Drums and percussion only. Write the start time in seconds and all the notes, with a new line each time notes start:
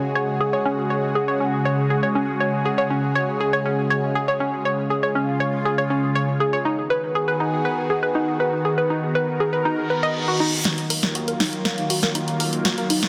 10.65 snare, closed hi-hat
10.78 closed hi-hat
10.90 open hi-hat
11.03 snare
11.15 closed hi-hat
11.28 closed hi-hat
11.40 snare, open hi-hat
11.53 closed hi-hat
11.65 snare, closed hi-hat
11.78 closed hi-hat
11.90 open hi-hat
12.03 snare
12.15 closed hi-hat
12.28 closed hi-hat
12.40 open hi-hat
12.53 closed hi-hat
12.65 snare, closed hi-hat
12.78 closed hi-hat
12.90 open hi-hat
13.03 snare